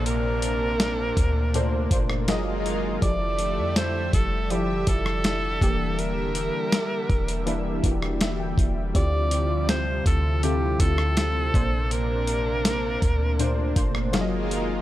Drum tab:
HH |x-x-x-x-x-x-x-x-|x-x-x-x-x-x-x-x-|x-x-x-xxx-x-x-x-|x-x-x-x-x-x-x-x-|
SD |----o------ro---|----o------ro---|----o------ro---|----o------ro---|
BD |------o---o-----|o-----o---o---o-|------o---o---o-|o-----o---o---o-|

HH |x-x-x-x-x-x-x-x-|
SD |----o------ro---|
BD |------o---o-----|